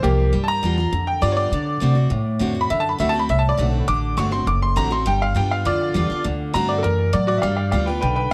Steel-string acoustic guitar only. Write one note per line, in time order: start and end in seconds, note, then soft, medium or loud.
0.04 0.32 F3 medium
0.33 0.61 G3 medium
0.63 0.77 G3 loud
0.63 0.78 B3 medium
0.63 0.76 F4 medium
0.78 0.93 B3 medium
0.78 0.92 F4 medium
0.93 1.49 D3 medium
1.22 1.50 G3 medium
1.22 1.51 B3 medium
1.22 1.51 F4 medium
1.53 1.79 D3 medium
1.80 1.95 D3 medium
1.80 1.96 A3 medium
1.80 1.96 C4 medium
1.80 1.94 F#4 medium
1.95 2.11 C4 medium
1.95 2.10 F#4 medium
2.10 2.67 A2 medium
2.39 2.54 D3 medium
2.39 2.54 A3 medium
2.39 2.55 C4 medium
2.39 2.53 F#4 loud
2.55 2.70 C4 soft
2.55 2.69 F#4 medium
2.70 2.97 D3 loud
2.98 3.13 D3 medium
2.98 3.14 A3 medium
2.98 3.14 C4 loud
2.98 3.13 F#4 loud
3.14 3.29 C4 medium
3.14 3.28 F#4 medium
3.29 3.85 A2 medium
3.57 3.86 D3 medium
3.57 3.87 A3 loud
3.57 3.87 C4 medium
3.57 3.87 F#4 medium
3.88 4.16 D3 medium
4.17 4.31 D3 medium
4.17 4.32 A3 medium
4.17 4.32 C4 loud
4.17 4.30 F#4 loud
4.31 4.47 C4 medium
4.31 4.46 F#4 medium
4.47 5.03 A2 medium
4.76 4.90 D3 loud
4.76 4.91 A3 medium
4.76 4.91 C4 medium
4.76 4.89 F#4 loud
4.90 5.06 C4 soft
4.90 5.05 F#4 medium
5.06 5.33 G3 medium
5.35 5.63 G3 medium
5.35 5.64 B3 medium
5.35 5.64 F4 loud
5.65 6.21 D3 medium
5.94 6.09 G3 medium
5.94 6.09 B3 medium
5.94 6.09 F4 loud
6.10 6.25 B3 medium
6.10 6.24 F4 medium
6.24 6.52 D3 loud
6.54 6.82 D3 medium
6.54 6.82 A3 medium
6.54 6.83 C4 loud
6.54 6.83 F#4 loud
6.84 7.12 E3 medium
7.13 7.41 F#3 medium
7.43 7.71 G3 loud
7.72 7.86 G3 medium
7.72 7.87 B3 medium
7.72 7.86 F4 medium
7.87 8.02 B3 soft
7.87 8.01 F4 medium
8.02 8.34 D3 medium